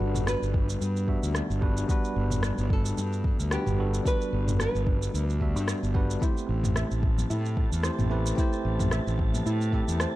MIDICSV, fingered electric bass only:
0, 0, Header, 1, 2, 480
1, 0, Start_track
1, 0, Key_signature, 1, "major"
1, 0, Tempo, 540541
1, 1682, Time_signature, 4, 2, 24, 8
1, 9019, End_track
2, 0, Start_track
2, 0, Title_t, "Fingered electric bass"
2, 0, Program_c, 0, 33
2, 2, Note_on_c, 0, 31, 92
2, 301, Note_off_c, 0, 31, 0
2, 374, Note_on_c, 0, 31, 89
2, 662, Note_off_c, 0, 31, 0
2, 720, Note_on_c, 0, 43, 67
2, 1020, Note_off_c, 0, 43, 0
2, 1093, Note_on_c, 0, 38, 78
2, 1241, Note_off_c, 0, 38, 0
2, 1331, Note_on_c, 0, 31, 81
2, 1621, Note_off_c, 0, 31, 0
2, 1919, Note_on_c, 0, 31, 96
2, 2219, Note_off_c, 0, 31, 0
2, 2292, Note_on_c, 0, 31, 91
2, 2581, Note_off_c, 0, 31, 0
2, 2641, Note_on_c, 0, 43, 70
2, 2940, Note_off_c, 0, 43, 0
2, 3014, Note_on_c, 0, 38, 69
2, 3162, Note_off_c, 0, 38, 0
2, 3255, Note_on_c, 0, 31, 78
2, 3543, Note_off_c, 0, 31, 0
2, 3842, Note_on_c, 0, 31, 94
2, 4141, Note_off_c, 0, 31, 0
2, 4216, Note_on_c, 0, 31, 92
2, 4503, Note_off_c, 0, 31, 0
2, 4564, Note_on_c, 0, 38, 83
2, 4936, Note_off_c, 0, 38, 0
2, 4936, Note_on_c, 0, 43, 75
2, 5083, Note_off_c, 0, 43, 0
2, 5176, Note_on_c, 0, 31, 84
2, 5463, Note_off_c, 0, 31, 0
2, 5762, Note_on_c, 0, 33, 94
2, 6061, Note_off_c, 0, 33, 0
2, 6138, Note_on_c, 0, 33, 88
2, 6424, Note_off_c, 0, 33, 0
2, 6485, Note_on_c, 0, 45, 71
2, 6782, Note_off_c, 0, 45, 0
2, 6855, Note_on_c, 0, 40, 75
2, 7002, Note_off_c, 0, 40, 0
2, 7093, Note_on_c, 0, 33, 82
2, 7381, Note_off_c, 0, 33, 0
2, 7679, Note_on_c, 0, 33, 91
2, 7979, Note_off_c, 0, 33, 0
2, 8053, Note_on_c, 0, 33, 90
2, 8342, Note_off_c, 0, 33, 0
2, 8400, Note_on_c, 0, 45, 74
2, 8700, Note_off_c, 0, 45, 0
2, 8772, Note_on_c, 0, 40, 75
2, 8921, Note_off_c, 0, 40, 0
2, 9019, End_track
0, 0, End_of_file